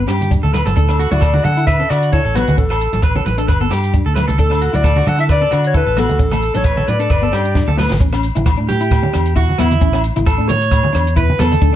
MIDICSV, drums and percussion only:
0, 0, Header, 1, 3, 480
1, 0, Start_track
1, 0, Tempo, 452489
1, 810, Time_signature, 4, 2, 24, 8
1, 12471, End_track
2, 0, Start_track
2, 0, Title_t, "Shekere"
2, 91, Note_on_c, 9, 82, 68
2, 197, Note_off_c, 9, 82, 0
2, 329, Note_on_c, 9, 82, 89
2, 436, Note_off_c, 9, 82, 0
2, 574, Note_on_c, 9, 82, 66
2, 680, Note_off_c, 9, 82, 0
2, 809, Note_on_c, 9, 82, 81
2, 915, Note_off_c, 9, 82, 0
2, 1052, Note_on_c, 9, 82, 65
2, 1158, Note_off_c, 9, 82, 0
2, 1290, Note_on_c, 9, 82, 88
2, 1397, Note_off_c, 9, 82, 0
2, 1538, Note_on_c, 9, 82, 68
2, 1644, Note_off_c, 9, 82, 0
2, 1770, Note_on_c, 9, 82, 85
2, 1876, Note_off_c, 9, 82, 0
2, 2009, Note_on_c, 9, 82, 73
2, 2115, Note_off_c, 9, 82, 0
2, 2253, Note_on_c, 9, 82, 93
2, 2359, Note_off_c, 9, 82, 0
2, 2497, Note_on_c, 9, 82, 70
2, 2603, Note_off_c, 9, 82, 0
2, 2740, Note_on_c, 9, 82, 86
2, 2846, Note_off_c, 9, 82, 0
2, 2979, Note_on_c, 9, 82, 70
2, 3085, Note_off_c, 9, 82, 0
2, 3221, Note_on_c, 9, 82, 85
2, 3328, Note_off_c, 9, 82, 0
2, 3460, Note_on_c, 9, 82, 67
2, 3566, Note_off_c, 9, 82, 0
2, 3692, Note_on_c, 9, 82, 86
2, 3798, Note_off_c, 9, 82, 0
2, 3932, Note_on_c, 9, 82, 64
2, 4038, Note_off_c, 9, 82, 0
2, 4173, Note_on_c, 9, 82, 88
2, 4279, Note_off_c, 9, 82, 0
2, 4417, Note_on_c, 9, 82, 67
2, 4523, Note_off_c, 9, 82, 0
2, 4654, Note_on_c, 9, 82, 80
2, 4760, Note_off_c, 9, 82, 0
2, 4897, Note_on_c, 9, 82, 65
2, 5003, Note_off_c, 9, 82, 0
2, 5137, Note_on_c, 9, 82, 81
2, 5243, Note_off_c, 9, 82, 0
2, 5377, Note_on_c, 9, 82, 58
2, 5483, Note_off_c, 9, 82, 0
2, 5610, Note_on_c, 9, 82, 74
2, 5716, Note_off_c, 9, 82, 0
2, 5854, Note_on_c, 9, 82, 62
2, 5960, Note_off_c, 9, 82, 0
2, 6097, Note_on_c, 9, 82, 84
2, 6204, Note_off_c, 9, 82, 0
2, 6333, Note_on_c, 9, 82, 56
2, 6439, Note_off_c, 9, 82, 0
2, 6574, Note_on_c, 9, 82, 76
2, 6680, Note_off_c, 9, 82, 0
2, 6816, Note_on_c, 9, 82, 59
2, 6923, Note_off_c, 9, 82, 0
2, 7052, Note_on_c, 9, 82, 76
2, 7158, Note_off_c, 9, 82, 0
2, 7298, Note_on_c, 9, 82, 57
2, 7404, Note_off_c, 9, 82, 0
2, 7539, Note_on_c, 9, 82, 75
2, 7645, Note_off_c, 9, 82, 0
2, 7781, Note_on_c, 9, 82, 59
2, 7887, Note_off_c, 9, 82, 0
2, 8022, Note_on_c, 9, 82, 82
2, 8128, Note_off_c, 9, 82, 0
2, 8258, Note_on_c, 9, 82, 62
2, 8364, Note_off_c, 9, 82, 0
2, 8492, Note_on_c, 9, 82, 79
2, 8598, Note_off_c, 9, 82, 0
2, 8736, Note_on_c, 9, 82, 68
2, 8842, Note_off_c, 9, 82, 0
2, 8974, Note_on_c, 9, 82, 84
2, 9080, Note_off_c, 9, 82, 0
2, 9209, Note_on_c, 9, 82, 62
2, 9315, Note_off_c, 9, 82, 0
2, 9455, Note_on_c, 9, 82, 87
2, 9561, Note_off_c, 9, 82, 0
2, 9698, Note_on_c, 9, 82, 67
2, 9804, Note_off_c, 9, 82, 0
2, 9938, Note_on_c, 9, 82, 97
2, 10044, Note_off_c, 9, 82, 0
2, 10173, Note_on_c, 9, 82, 70
2, 10279, Note_off_c, 9, 82, 0
2, 10408, Note_on_c, 9, 82, 86
2, 10514, Note_off_c, 9, 82, 0
2, 10649, Note_on_c, 9, 82, 70
2, 10755, Note_off_c, 9, 82, 0
2, 10895, Note_on_c, 9, 82, 87
2, 11001, Note_off_c, 9, 82, 0
2, 11129, Note_on_c, 9, 82, 67
2, 11235, Note_off_c, 9, 82, 0
2, 11368, Note_on_c, 9, 82, 87
2, 11474, Note_off_c, 9, 82, 0
2, 11614, Note_on_c, 9, 82, 70
2, 11720, Note_off_c, 9, 82, 0
2, 11845, Note_on_c, 9, 82, 91
2, 11951, Note_off_c, 9, 82, 0
2, 12091, Note_on_c, 9, 82, 73
2, 12197, Note_off_c, 9, 82, 0
2, 12328, Note_on_c, 9, 82, 83
2, 12434, Note_off_c, 9, 82, 0
2, 12471, End_track
3, 0, Start_track
3, 0, Title_t, "Drums"
3, 89, Note_on_c, 9, 68, 57
3, 90, Note_on_c, 9, 37, 61
3, 90, Note_on_c, 9, 42, 48
3, 195, Note_off_c, 9, 68, 0
3, 196, Note_off_c, 9, 37, 0
3, 196, Note_off_c, 9, 42, 0
3, 224, Note_on_c, 9, 42, 47
3, 224, Note_on_c, 9, 63, 47
3, 330, Note_off_c, 9, 42, 0
3, 330, Note_off_c, 9, 63, 0
3, 331, Note_on_c, 9, 36, 74
3, 335, Note_on_c, 9, 42, 44
3, 335, Note_on_c, 9, 63, 49
3, 438, Note_off_c, 9, 36, 0
3, 441, Note_off_c, 9, 42, 0
3, 441, Note_off_c, 9, 63, 0
3, 467, Note_on_c, 9, 63, 53
3, 570, Note_on_c, 9, 68, 58
3, 572, Note_on_c, 9, 64, 59
3, 573, Note_off_c, 9, 63, 0
3, 575, Note_on_c, 9, 37, 59
3, 575, Note_on_c, 9, 42, 47
3, 676, Note_off_c, 9, 68, 0
3, 678, Note_off_c, 9, 64, 0
3, 681, Note_off_c, 9, 37, 0
3, 681, Note_off_c, 9, 42, 0
3, 706, Note_on_c, 9, 42, 42
3, 707, Note_on_c, 9, 64, 71
3, 812, Note_off_c, 9, 42, 0
3, 813, Note_off_c, 9, 64, 0
3, 814, Note_on_c, 9, 36, 80
3, 817, Note_on_c, 9, 42, 47
3, 920, Note_off_c, 9, 36, 0
3, 923, Note_off_c, 9, 42, 0
3, 939, Note_on_c, 9, 37, 60
3, 942, Note_on_c, 9, 68, 63
3, 1045, Note_off_c, 9, 37, 0
3, 1048, Note_off_c, 9, 68, 0
3, 1061, Note_on_c, 9, 42, 45
3, 1167, Note_off_c, 9, 42, 0
3, 1185, Note_on_c, 9, 64, 59
3, 1188, Note_on_c, 9, 42, 43
3, 1292, Note_off_c, 9, 64, 0
3, 1294, Note_off_c, 9, 42, 0
3, 1297, Note_on_c, 9, 36, 82
3, 1299, Note_on_c, 9, 37, 67
3, 1299, Note_on_c, 9, 42, 45
3, 1301, Note_on_c, 9, 68, 61
3, 1403, Note_off_c, 9, 36, 0
3, 1405, Note_off_c, 9, 37, 0
3, 1405, Note_off_c, 9, 42, 0
3, 1407, Note_off_c, 9, 68, 0
3, 1421, Note_on_c, 9, 63, 69
3, 1527, Note_off_c, 9, 63, 0
3, 1536, Note_on_c, 9, 42, 42
3, 1536, Note_on_c, 9, 64, 64
3, 1642, Note_off_c, 9, 42, 0
3, 1642, Note_off_c, 9, 64, 0
3, 1670, Note_on_c, 9, 42, 42
3, 1777, Note_off_c, 9, 42, 0
3, 1779, Note_on_c, 9, 36, 77
3, 1782, Note_on_c, 9, 37, 59
3, 1782, Note_on_c, 9, 42, 42
3, 1782, Note_on_c, 9, 68, 56
3, 1885, Note_off_c, 9, 36, 0
3, 1888, Note_off_c, 9, 37, 0
3, 1888, Note_off_c, 9, 42, 0
3, 1889, Note_off_c, 9, 68, 0
3, 2020, Note_on_c, 9, 37, 65
3, 2020, Note_on_c, 9, 42, 43
3, 2028, Note_on_c, 9, 68, 55
3, 2126, Note_off_c, 9, 37, 0
3, 2126, Note_off_c, 9, 42, 0
3, 2134, Note_off_c, 9, 68, 0
3, 2148, Note_on_c, 9, 42, 40
3, 2254, Note_off_c, 9, 42, 0
3, 2254, Note_on_c, 9, 42, 41
3, 2257, Note_on_c, 9, 36, 72
3, 2360, Note_off_c, 9, 42, 0
3, 2363, Note_off_c, 9, 36, 0
3, 2496, Note_on_c, 9, 37, 62
3, 2496, Note_on_c, 9, 42, 46
3, 2503, Note_on_c, 9, 68, 55
3, 2508, Note_on_c, 9, 64, 63
3, 2602, Note_off_c, 9, 37, 0
3, 2602, Note_off_c, 9, 42, 0
3, 2609, Note_off_c, 9, 68, 0
3, 2614, Note_off_c, 9, 64, 0
3, 2626, Note_on_c, 9, 42, 44
3, 2634, Note_on_c, 9, 63, 73
3, 2731, Note_off_c, 9, 42, 0
3, 2731, Note_on_c, 9, 42, 46
3, 2737, Note_on_c, 9, 36, 78
3, 2741, Note_off_c, 9, 63, 0
3, 2837, Note_off_c, 9, 42, 0
3, 2844, Note_off_c, 9, 36, 0
3, 2866, Note_on_c, 9, 37, 62
3, 2877, Note_on_c, 9, 68, 65
3, 2972, Note_off_c, 9, 37, 0
3, 2979, Note_on_c, 9, 42, 43
3, 2983, Note_off_c, 9, 68, 0
3, 3085, Note_off_c, 9, 42, 0
3, 3106, Note_on_c, 9, 42, 47
3, 3107, Note_on_c, 9, 64, 63
3, 3209, Note_off_c, 9, 42, 0
3, 3209, Note_on_c, 9, 37, 63
3, 3209, Note_on_c, 9, 42, 49
3, 3213, Note_off_c, 9, 64, 0
3, 3216, Note_on_c, 9, 36, 86
3, 3230, Note_on_c, 9, 68, 61
3, 3315, Note_off_c, 9, 37, 0
3, 3315, Note_off_c, 9, 42, 0
3, 3322, Note_off_c, 9, 36, 0
3, 3336, Note_off_c, 9, 68, 0
3, 3348, Note_on_c, 9, 63, 64
3, 3454, Note_off_c, 9, 63, 0
3, 3455, Note_on_c, 9, 42, 42
3, 3462, Note_on_c, 9, 64, 65
3, 3561, Note_off_c, 9, 42, 0
3, 3568, Note_off_c, 9, 64, 0
3, 3584, Note_on_c, 9, 42, 46
3, 3690, Note_off_c, 9, 42, 0
3, 3696, Note_on_c, 9, 37, 61
3, 3696, Note_on_c, 9, 42, 45
3, 3697, Note_on_c, 9, 36, 79
3, 3710, Note_on_c, 9, 68, 56
3, 3802, Note_off_c, 9, 37, 0
3, 3802, Note_off_c, 9, 42, 0
3, 3803, Note_off_c, 9, 36, 0
3, 3816, Note_off_c, 9, 68, 0
3, 3941, Note_on_c, 9, 37, 63
3, 3941, Note_on_c, 9, 42, 49
3, 3946, Note_on_c, 9, 68, 58
3, 4047, Note_off_c, 9, 37, 0
3, 4047, Note_off_c, 9, 42, 0
3, 4052, Note_off_c, 9, 68, 0
3, 4067, Note_on_c, 9, 42, 43
3, 4173, Note_off_c, 9, 42, 0
3, 4176, Note_on_c, 9, 42, 46
3, 4177, Note_on_c, 9, 36, 75
3, 4282, Note_off_c, 9, 42, 0
3, 4284, Note_off_c, 9, 36, 0
3, 4414, Note_on_c, 9, 64, 65
3, 4415, Note_on_c, 9, 37, 65
3, 4415, Note_on_c, 9, 42, 47
3, 4426, Note_on_c, 9, 68, 60
3, 4520, Note_off_c, 9, 64, 0
3, 4521, Note_off_c, 9, 37, 0
3, 4521, Note_off_c, 9, 42, 0
3, 4532, Note_off_c, 9, 68, 0
3, 4543, Note_on_c, 9, 63, 66
3, 4548, Note_on_c, 9, 42, 47
3, 4649, Note_off_c, 9, 63, 0
3, 4654, Note_off_c, 9, 42, 0
3, 4657, Note_on_c, 9, 36, 76
3, 4658, Note_on_c, 9, 42, 46
3, 4763, Note_off_c, 9, 36, 0
3, 4764, Note_off_c, 9, 42, 0
3, 4785, Note_on_c, 9, 37, 61
3, 4794, Note_on_c, 9, 68, 63
3, 4892, Note_off_c, 9, 37, 0
3, 4897, Note_on_c, 9, 42, 45
3, 4900, Note_off_c, 9, 68, 0
3, 5003, Note_off_c, 9, 42, 0
3, 5024, Note_on_c, 9, 64, 60
3, 5030, Note_on_c, 9, 42, 48
3, 5130, Note_off_c, 9, 64, 0
3, 5135, Note_off_c, 9, 42, 0
3, 5135, Note_on_c, 9, 37, 65
3, 5135, Note_on_c, 9, 42, 47
3, 5136, Note_on_c, 9, 36, 79
3, 5138, Note_on_c, 9, 68, 61
3, 5241, Note_off_c, 9, 37, 0
3, 5241, Note_off_c, 9, 42, 0
3, 5242, Note_off_c, 9, 36, 0
3, 5244, Note_off_c, 9, 68, 0
3, 5268, Note_on_c, 9, 63, 64
3, 5374, Note_off_c, 9, 63, 0
3, 5376, Note_on_c, 9, 42, 43
3, 5378, Note_on_c, 9, 64, 66
3, 5482, Note_off_c, 9, 42, 0
3, 5484, Note_off_c, 9, 64, 0
3, 5499, Note_on_c, 9, 42, 42
3, 5605, Note_off_c, 9, 42, 0
3, 5614, Note_on_c, 9, 36, 79
3, 5616, Note_on_c, 9, 37, 60
3, 5616, Note_on_c, 9, 42, 42
3, 5625, Note_on_c, 9, 68, 57
3, 5720, Note_off_c, 9, 36, 0
3, 5722, Note_off_c, 9, 37, 0
3, 5722, Note_off_c, 9, 42, 0
3, 5731, Note_off_c, 9, 68, 0
3, 5856, Note_on_c, 9, 37, 66
3, 5856, Note_on_c, 9, 42, 43
3, 5866, Note_on_c, 9, 68, 54
3, 5962, Note_off_c, 9, 37, 0
3, 5962, Note_off_c, 9, 42, 0
3, 5972, Note_off_c, 9, 68, 0
3, 5981, Note_on_c, 9, 42, 43
3, 6088, Note_off_c, 9, 42, 0
3, 6088, Note_on_c, 9, 42, 42
3, 6093, Note_on_c, 9, 36, 77
3, 6194, Note_off_c, 9, 42, 0
3, 6199, Note_off_c, 9, 36, 0
3, 6330, Note_on_c, 9, 37, 61
3, 6330, Note_on_c, 9, 42, 43
3, 6332, Note_on_c, 9, 64, 61
3, 6346, Note_on_c, 9, 68, 57
3, 6436, Note_off_c, 9, 37, 0
3, 6436, Note_off_c, 9, 42, 0
3, 6438, Note_off_c, 9, 64, 0
3, 6452, Note_off_c, 9, 68, 0
3, 6461, Note_on_c, 9, 42, 41
3, 6463, Note_on_c, 9, 63, 69
3, 6568, Note_off_c, 9, 42, 0
3, 6569, Note_off_c, 9, 63, 0
3, 6569, Note_on_c, 9, 42, 43
3, 6571, Note_on_c, 9, 36, 76
3, 6675, Note_off_c, 9, 42, 0
3, 6677, Note_off_c, 9, 36, 0
3, 6699, Note_on_c, 9, 37, 63
3, 6700, Note_on_c, 9, 63, 61
3, 6710, Note_on_c, 9, 68, 63
3, 6805, Note_off_c, 9, 37, 0
3, 6806, Note_off_c, 9, 63, 0
3, 6811, Note_on_c, 9, 42, 42
3, 6816, Note_off_c, 9, 68, 0
3, 6917, Note_off_c, 9, 42, 0
3, 6940, Note_on_c, 9, 42, 43
3, 6947, Note_on_c, 9, 64, 58
3, 7044, Note_off_c, 9, 42, 0
3, 7044, Note_on_c, 9, 37, 66
3, 7044, Note_on_c, 9, 42, 45
3, 7050, Note_on_c, 9, 36, 85
3, 7054, Note_off_c, 9, 64, 0
3, 7060, Note_on_c, 9, 68, 60
3, 7150, Note_off_c, 9, 37, 0
3, 7150, Note_off_c, 9, 42, 0
3, 7156, Note_off_c, 9, 36, 0
3, 7166, Note_off_c, 9, 68, 0
3, 7188, Note_on_c, 9, 63, 63
3, 7293, Note_on_c, 9, 42, 45
3, 7294, Note_off_c, 9, 63, 0
3, 7305, Note_on_c, 9, 64, 66
3, 7399, Note_off_c, 9, 42, 0
3, 7411, Note_off_c, 9, 64, 0
3, 7421, Note_on_c, 9, 42, 46
3, 7527, Note_off_c, 9, 42, 0
3, 7530, Note_on_c, 9, 37, 64
3, 7530, Note_on_c, 9, 42, 44
3, 7533, Note_on_c, 9, 36, 77
3, 7545, Note_on_c, 9, 68, 55
3, 7636, Note_off_c, 9, 37, 0
3, 7636, Note_off_c, 9, 42, 0
3, 7639, Note_off_c, 9, 36, 0
3, 7651, Note_off_c, 9, 68, 0
3, 7776, Note_on_c, 9, 37, 67
3, 7776, Note_on_c, 9, 42, 48
3, 7785, Note_on_c, 9, 68, 56
3, 7882, Note_off_c, 9, 37, 0
3, 7882, Note_off_c, 9, 42, 0
3, 7891, Note_off_c, 9, 68, 0
3, 7901, Note_on_c, 9, 42, 44
3, 8007, Note_off_c, 9, 42, 0
3, 8007, Note_on_c, 9, 38, 39
3, 8011, Note_on_c, 9, 36, 80
3, 8113, Note_off_c, 9, 38, 0
3, 8117, Note_off_c, 9, 36, 0
3, 8150, Note_on_c, 9, 63, 60
3, 8248, Note_on_c, 9, 38, 60
3, 8256, Note_off_c, 9, 63, 0
3, 8262, Note_on_c, 9, 68, 53
3, 8265, Note_on_c, 9, 64, 61
3, 8354, Note_off_c, 9, 38, 0
3, 8368, Note_off_c, 9, 68, 0
3, 8372, Note_off_c, 9, 64, 0
3, 8381, Note_on_c, 9, 38, 55
3, 8401, Note_on_c, 9, 63, 67
3, 8487, Note_off_c, 9, 38, 0
3, 8490, Note_on_c, 9, 42, 50
3, 8491, Note_on_c, 9, 36, 84
3, 8508, Note_off_c, 9, 63, 0
3, 8596, Note_off_c, 9, 42, 0
3, 8597, Note_off_c, 9, 36, 0
3, 8620, Note_on_c, 9, 37, 67
3, 8631, Note_on_c, 9, 68, 69
3, 8727, Note_off_c, 9, 37, 0
3, 8730, Note_on_c, 9, 42, 47
3, 8737, Note_off_c, 9, 68, 0
3, 8836, Note_off_c, 9, 42, 0
3, 8864, Note_on_c, 9, 42, 49
3, 8875, Note_on_c, 9, 63, 69
3, 8970, Note_off_c, 9, 42, 0
3, 8974, Note_on_c, 9, 36, 90
3, 8974, Note_on_c, 9, 37, 70
3, 8974, Note_on_c, 9, 42, 49
3, 8980, Note_on_c, 9, 68, 67
3, 8981, Note_off_c, 9, 63, 0
3, 9080, Note_off_c, 9, 37, 0
3, 9080, Note_off_c, 9, 42, 0
3, 9081, Note_off_c, 9, 36, 0
3, 9086, Note_off_c, 9, 68, 0
3, 9216, Note_on_c, 9, 42, 45
3, 9217, Note_on_c, 9, 64, 63
3, 9322, Note_off_c, 9, 42, 0
3, 9323, Note_off_c, 9, 64, 0
3, 9342, Note_on_c, 9, 42, 49
3, 9448, Note_off_c, 9, 42, 0
3, 9455, Note_on_c, 9, 36, 88
3, 9458, Note_on_c, 9, 37, 68
3, 9458, Note_on_c, 9, 42, 46
3, 9461, Note_on_c, 9, 68, 60
3, 9561, Note_off_c, 9, 36, 0
3, 9564, Note_off_c, 9, 37, 0
3, 9564, Note_off_c, 9, 42, 0
3, 9567, Note_off_c, 9, 68, 0
3, 9582, Note_on_c, 9, 63, 68
3, 9688, Note_off_c, 9, 63, 0
3, 9692, Note_on_c, 9, 37, 71
3, 9692, Note_on_c, 9, 42, 49
3, 9697, Note_on_c, 9, 68, 61
3, 9798, Note_off_c, 9, 37, 0
3, 9798, Note_off_c, 9, 42, 0
3, 9803, Note_off_c, 9, 68, 0
3, 9818, Note_on_c, 9, 42, 49
3, 9925, Note_off_c, 9, 42, 0
3, 9930, Note_on_c, 9, 42, 42
3, 9932, Note_on_c, 9, 36, 81
3, 10037, Note_off_c, 9, 42, 0
3, 10038, Note_off_c, 9, 36, 0
3, 10069, Note_on_c, 9, 63, 58
3, 10167, Note_on_c, 9, 37, 70
3, 10167, Note_on_c, 9, 42, 49
3, 10170, Note_on_c, 9, 64, 62
3, 10175, Note_off_c, 9, 63, 0
3, 10181, Note_on_c, 9, 68, 60
3, 10274, Note_off_c, 9, 37, 0
3, 10274, Note_off_c, 9, 42, 0
3, 10276, Note_off_c, 9, 64, 0
3, 10287, Note_off_c, 9, 68, 0
3, 10299, Note_on_c, 9, 42, 49
3, 10304, Note_on_c, 9, 63, 64
3, 10405, Note_off_c, 9, 42, 0
3, 10405, Note_on_c, 9, 42, 50
3, 10410, Note_off_c, 9, 63, 0
3, 10410, Note_on_c, 9, 36, 90
3, 10511, Note_off_c, 9, 42, 0
3, 10517, Note_off_c, 9, 36, 0
3, 10536, Note_on_c, 9, 37, 64
3, 10548, Note_on_c, 9, 68, 69
3, 10642, Note_off_c, 9, 37, 0
3, 10648, Note_on_c, 9, 42, 43
3, 10654, Note_off_c, 9, 68, 0
3, 10754, Note_off_c, 9, 42, 0
3, 10778, Note_on_c, 9, 42, 47
3, 10786, Note_on_c, 9, 63, 64
3, 10884, Note_off_c, 9, 42, 0
3, 10889, Note_on_c, 9, 37, 74
3, 10889, Note_on_c, 9, 42, 51
3, 10890, Note_on_c, 9, 36, 94
3, 10892, Note_off_c, 9, 63, 0
3, 10896, Note_on_c, 9, 68, 67
3, 10995, Note_off_c, 9, 37, 0
3, 10995, Note_off_c, 9, 42, 0
3, 10996, Note_off_c, 9, 36, 0
3, 11002, Note_off_c, 9, 68, 0
3, 11126, Note_on_c, 9, 42, 51
3, 11138, Note_on_c, 9, 63, 58
3, 11138, Note_on_c, 9, 64, 63
3, 11232, Note_off_c, 9, 42, 0
3, 11244, Note_off_c, 9, 63, 0
3, 11244, Note_off_c, 9, 64, 0
3, 11258, Note_on_c, 9, 42, 50
3, 11365, Note_off_c, 9, 42, 0
3, 11366, Note_on_c, 9, 37, 68
3, 11366, Note_on_c, 9, 42, 50
3, 11368, Note_on_c, 9, 36, 80
3, 11375, Note_on_c, 9, 68, 63
3, 11472, Note_off_c, 9, 37, 0
3, 11472, Note_off_c, 9, 42, 0
3, 11474, Note_off_c, 9, 36, 0
3, 11481, Note_off_c, 9, 68, 0
3, 11503, Note_on_c, 9, 63, 68
3, 11609, Note_off_c, 9, 63, 0
3, 11614, Note_on_c, 9, 37, 71
3, 11614, Note_on_c, 9, 42, 53
3, 11619, Note_on_c, 9, 68, 61
3, 11720, Note_off_c, 9, 37, 0
3, 11720, Note_off_c, 9, 42, 0
3, 11725, Note_off_c, 9, 68, 0
3, 11742, Note_on_c, 9, 42, 51
3, 11846, Note_on_c, 9, 36, 82
3, 11847, Note_off_c, 9, 42, 0
3, 11847, Note_on_c, 9, 42, 52
3, 11953, Note_off_c, 9, 36, 0
3, 11953, Note_off_c, 9, 42, 0
3, 11984, Note_on_c, 9, 63, 61
3, 12084, Note_on_c, 9, 37, 65
3, 12084, Note_on_c, 9, 42, 49
3, 12090, Note_off_c, 9, 63, 0
3, 12090, Note_on_c, 9, 64, 67
3, 12098, Note_on_c, 9, 68, 60
3, 12190, Note_off_c, 9, 37, 0
3, 12190, Note_off_c, 9, 42, 0
3, 12196, Note_off_c, 9, 64, 0
3, 12204, Note_off_c, 9, 68, 0
3, 12218, Note_on_c, 9, 42, 52
3, 12218, Note_on_c, 9, 63, 71
3, 12323, Note_off_c, 9, 42, 0
3, 12323, Note_on_c, 9, 42, 54
3, 12324, Note_off_c, 9, 63, 0
3, 12325, Note_on_c, 9, 36, 87
3, 12429, Note_off_c, 9, 42, 0
3, 12431, Note_off_c, 9, 36, 0
3, 12471, End_track
0, 0, End_of_file